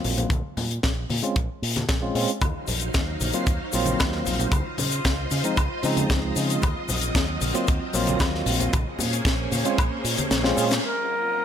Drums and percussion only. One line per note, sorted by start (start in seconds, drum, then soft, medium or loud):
0.04 open hi-hat loud
0.04 low conga medium
0.18 closed hi-hat medium
0.18 low conga loud
0.30 kick loud
0.30 closed hi-hat medium
0.30 high conga medium
0.57 open hi-hat medium
0.57 low conga medium
0.71 closed hi-hat medium
0.83 kick loud
0.83 snare loud
0.83 closed hi-hat medium
1.10 open hi-hat loud
1.10 high conga medium
1.24 closed hi-hat medium
1.36 kick loud
1.36 closed hi-hat medium
1.63 open hi-hat loud
1.76 snare soft
1.76 closed hi-hat medium
1.76 high conga medium
1.89 kick loud
1.89 snare loud
1.89 closed hi-hat medium
2.15 open hi-hat loud
2.28 closed hi-hat medium
2.41 kick loud
2.41 closed hi-hat medium
2.41 high conga medium
2.41 high woodblock medium
2.41 shaker soft
2.67 open hi-hat loud
2.67 low conga medium
2.67 shaker medium
2.80 closed hi-hat medium
2.80 shaker medium
2.94 kick loud
2.94 snare loud
2.94 closed hi-hat medium
2.94 shaker medium
3.21 open hi-hat loud
3.21 high conga medium
3.21 shaker medium
3.33 closed hi-hat medium
3.33 shaker medium
3.47 kick loud
3.47 closed hi-hat medium
3.47 shaker soft
3.73 open hi-hat loud
3.73 shaker medium
3.86 closed hi-hat medium
3.86 high conga medium
3.86 shaker medium
4.00 kick loud
4.00 snare loud
4.00 closed hi-hat medium
4.00 high woodblock medium
4.00 shaker medium
4.12 snare soft
4.25 open hi-hat loud
4.25 low conga medium
4.25 shaker medium
4.40 closed hi-hat medium
4.40 low conga medium
4.40 shaker medium
4.52 kick loud
4.52 closed hi-hat medium
4.52 high conga medium
4.52 high woodblock medium
4.52 shaker soft
4.78 open hi-hat loud
4.78 low conga medium
4.78 shaker medium
4.91 closed hi-hat medium
4.91 shaker medium
5.05 kick loud
5.05 snare loud
5.05 closed hi-hat medium
5.05 shaker soft
5.31 open hi-hat medium
5.31 high conga medium
5.31 shaker medium
5.44 closed hi-hat medium
5.44 shaker medium
5.57 kick loud
5.57 closed hi-hat medium
5.57 high woodblock medium
5.57 shaker soft
5.83 open hi-hat loud
5.83 shaker medium
5.97 closed hi-hat medium
5.97 high conga medium
5.97 shaker medium
6.10 kick loud
6.10 snare loud
6.10 closed hi-hat medium
6.10 shaker soft
6.36 open hi-hat loud
6.36 shaker medium
6.50 closed hi-hat medium
6.50 shaker medium
6.62 kick loud
6.62 closed hi-hat medium
6.62 high conga medium
6.62 high woodblock medium
6.62 shaker soft
6.89 open hi-hat loud
6.89 low conga medium
6.89 shaker medium
7.01 closed hi-hat medium
7.01 shaker medium
7.15 kick loud
7.15 snare loud
7.15 closed hi-hat medium
7.15 shaker soft
7.41 open hi-hat medium
7.41 high conga medium
7.41 shaker medium
7.55 closed hi-hat medium
7.55 shaker medium
7.67 kick loud
7.67 closed hi-hat medium
7.67 shaker soft
7.93 open hi-hat loud
7.93 shaker medium
8.07 closed hi-hat medium
8.07 high conga medium
8.07 shaker medium
8.20 kick loud
8.20 snare loud
8.20 closed hi-hat medium
8.20 high woodblock medium
8.20 shaker medium
8.35 snare soft
8.46 open hi-hat loud
8.46 low conga medium
8.46 shaker medium
8.60 closed hi-hat medium
8.60 low conga medium
8.60 shaker medium
8.73 kick loud
8.73 closed hi-hat medium
8.73 high conga medium
8.73 high woodblock medium
8.73 shaker soft
8.99 open hi-hat loud
8.99 low conga loud
8.99 shaker medium
9.13 closed hi-hat medium
9.13 shaker medium
9.25 kick loud
9.25 snare loud
9.25 closed hi-hat medium
9.25 shaker soft
9.52 open hi-hat loud
9.52 high conga medium
9.52 shaker medium
9.65 closed hi-hat medium
9.65 shaker medium
9.78 kick loud
9.78 closed hi-hat medium
9.78 high woodblock medium
9.78 shaker soft
10.05 open hi-hat loud
10.05 shaker medium
10.18 closed hi-hat medium
10.18 high conga medium
10.18 shaker medium
10.31 snare loud
10.31 closed hi-hat medium
10.31 shaker medium
10.44 snare medium
10.58 open hi-hat loud
10.58 shaker medium
10.71 snare loud
10.71 closed hi-hat medium
10.71 shaker medium